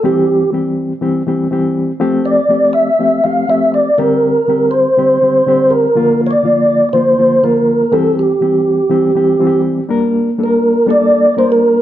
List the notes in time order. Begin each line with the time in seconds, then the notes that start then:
0.03 D#3 G3 C4 G4
0.08 E3
0.52 E3 G3 C4 G4
1.01 E3 G3 C4 G4
1.27 E3 G3 C4 G4
1.51 E3 G3 C4 G4
2.00 F3 A3 C4 G4
2.25 D5
2.49 F3 A3 C4 G4
2.73 E5
2.99 F3 A3 C4 G4
3.24 F3 A3 C4 G4 F5
3.48 F3 A3 C4 G4 E5
3.74 D5
3.98 D3 G3 C4 G4 A#4
4.48 D3 G3 C4 G4
4.71 C5
4.97 D3 G3 C4 G4
5.22 D3 G3 C4 G4
5.47 D3 G3 C4 G4
5.70 A#4
5.96 D3 F3 A#3 F4
6.27 C#5
6.31 D5
6.43 D3 F3 A#3 F4
6.93 D3 F3 A#3 F4 C5
7.18 D3 F3 A#3 F4
7.42 D3 F3 A#3 F4 A#4
7.92 E3 G3 C4 G4 A4
8.19 G4
8.41 E3 G3 C4 G4
8.89 E3 G3 C4 G4
9.15 E3 G3 C4 G4
9.39 E3 G3 C4 F4
9.47 G4
9.88 G3 A#3 D4 A#4
10.38 G3 A#3 D4 A4
10.43 A#4
10.86 G3 A#3 D4 A4 D5
11.37 G3 A#3 D4 A#4 C5
11.52 A#4